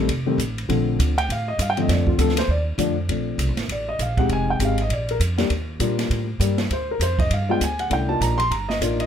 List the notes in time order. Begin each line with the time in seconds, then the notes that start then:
0.08 F1, kick, ride
0.26 D#3 G3 A3 C4
0.38 A1, kick, hi-hat pedal, ride
0.58 ride
0.69 A#1 D3 F3 A3 C4, kick, ride
0.99 D2, kick, hi-hat pedal, ride
1.18 G5, ride
1.29 A2 F5, kick, ride
1.48 D#5
1.59 G2 F5, kick, hi-hat pedal, ride
1.70 G5
1.77 D3 F3 A3 C4, ride
1.81 D#5
1.88 F2 D5, kick, snare, ride
2.07 F4, kick
2.18 D2 D3 F3 A3 C4 A4, kick, hi-hat pedal, ride
2.29 snare
2.37 C5, snare, ride
2.48 D#2 D5, kick
2.78 F2 D3 F3 A3 D4, kick, hi-hat pedal, ride
3.09 A#1 F3 A3 C4 D4, kick, ride
3.38 C2, kick, hi-hat pedal, ride
3.48 A#1
3.57 A1, snare, ride
3.68 A1 D5, kick, ride
3.89 D#5
3.99 A#1 F5, kick, hi-hat pedal, ride
4.17 G#3 C4 D#4 G4 F#5, kick, ride
4.29 F1 G#5, kick, ride
4.50 G5
4.59 G#1 G#3 C4 D#4 G4, kick, hi-hat pedal, ride
4.65 F5
4.78 ride
4.82 D#5
4.89 A#1 D5, kick, ride
5.09 A#4, ride
5.20 F2, kick, hi-hat pedal, ride
5.38 G3 A#3 D4 G4, snare, ride
5.50 D#2, kick, ride
5.80 A#2 G3 A#3 D4 F4, kick, hi-hat pedal, ride
5.99 snare, ride
6.10 A2, kick, ride
6.40 G2 G3 A#3 D4 G4, kick, hi-hat pedal, ride
6.58 snare, ride
6.70 D2 C5, kick, ride
6.91 A#4
7.00 F2 C5, kick, hi-hat pedal, ride
7.19 D#5, kick, ride
7.30 G2 F5, kick, ride
7.49 G#3 B3 D4 F4 G5
7.61 D2 G#5, kick, hi-hat pedal, ride
7.79 F#5, ride
7.90 C2 A3 C#4 D4 E4 G5, kick, ride
8.09 A#3 D4 D#4 F4 A5
8.21 A#1 A#5, kick, hi-hat pedal, ride
8.38 C6, ride
8.51 G1 A#5, kick, ride
8.69 D#5, snare
8.81 A1 A#3 D4 D#4 F4, kick, hi-hat pedal, ride
9.00 D#5, ride